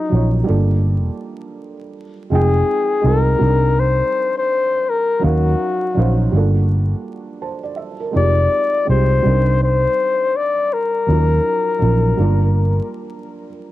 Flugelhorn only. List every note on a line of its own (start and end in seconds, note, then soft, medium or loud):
0.00 0.48 D#4 medium
2.33 3.08 G#4 medium
3.07 3.81 A#4 loud
3.80 4.36 C5 loud
4.38 4.91 C5 loud
4.89 5.24 A#4 medium
5.25 6.30 F#4 medium
8.17 8.85 D5 loud
8.90 9.58 C5 loud
9.63 10.38 C5 loud
10.36 10.75 D5 medium
10.73 12.92 A#4 medium